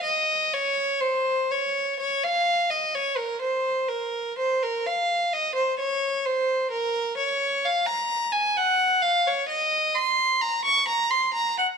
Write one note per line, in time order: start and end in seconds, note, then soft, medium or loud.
0.03 0.52 D#5 medium
0.54 1.02 C#5 medium
1.01 1.49 C5 medium
1.51 1.98 C#5 medium
2.00 2.22 C#5 medium
2.24 2.70 F5 medium
2.70 2.93 D#5 medium
2.95 3.18 C#5 medium
3.17 3.41 A#4 medium
3.41 3.88 C5 medium
3.88 4.36 A#4 medium
4.38 4.60 C5 medium
4.63 4.85 A#4 medium
4.86 5.32 F5 medium
5.33 5.56 D#5 medium
5.55 5.78 C5 medium
5.79 6.24 C#5 medium
6.26 6.71 C5 medium
6.71 7.16 A#4 medium
7.17 7.63 C#5 medium
7.65 7.88 F5 medium
7.86 8.33 A#5 medium
8.32 8.56 G#5 medium
8.57 9.03 F#5 medium
9.02 9.26 F5 medium
9.27 9.50 C#5 medium
9.49 9.95 D#5 medium
9.95 10.42 C6 medium
10.42 10.66 A#5 medium
10.65 10.88 C#6 medium
10.88 11.12 A#5 medium
11.10 11.35 C6 medium
11.34 11.59 A#5 medium
11.58 11.66 F#5 medium